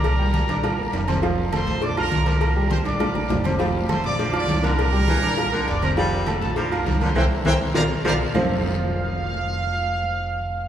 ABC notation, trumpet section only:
X:1
M:4/4
L:1/8
Q:1/4=202
K:F
V:1 name="Trumpet section"
[Bb]6- [Bb] z | z2 [cc']2 [dd'] [Bb]2 [Bb]- | [Bb]2 [cc'] [dd']4 z | z2 [cc'] [dd']2 [dd']2 [Bb]- |
[Bb]6 [dd'] [Bb] | [Aa]3 [Aa] [Bb]3 [cc'] | [ceg] z [ceg] z [dfb] z [dfb] z | f8- |
f8 |]